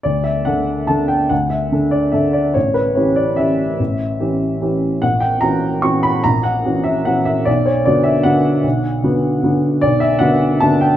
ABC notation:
X:1
M:3/4
L:1/8
Q:1/4=147
K:D
V:1 name="Upright piano"
d e f2 a g | f e2 d e d | c B c d e2- | e6 |
f g ^a2 c' b | ^a f2 e f e | d c d e f2- | f6 |
[K:Bm] d e f2 a g |]
V:2 name="Upright piano"
D,,2 [D,DA]2 [D,DA]2 | D,,2 [D,DA]2 [D,DA]2 | A,,,2 [E,CG]2 [E,CG]2 | A,,,2 [E,CG]2 [E,CG]2 |
^A,,,2 [E,CF]2 [E,CF]2 | ^A,,,2 [E,CF]2 [E,CF]2 | B,,,2 [D,B,F]2 [D,B,F]2 | B,,,2 [D,B,F]2 [D,B,F]2 |
[K:Bm] B,,,2 [D,B,F]2 [D,B,F]2 |]